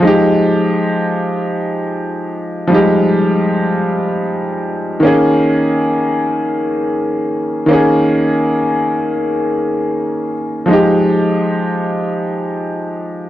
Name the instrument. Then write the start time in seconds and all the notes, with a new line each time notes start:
grand piano
0.00 F3 G#3
0.05 D#4 G4
2.67 F3 G3
2.72 D#4 G4
2.76 G#3
5.00 D#3 A#3
5.05 C#4 G#4
7.66 D#3 A#3
7.71 C#4 G#4
10.66 F3 G#3
10.70 D#4 G4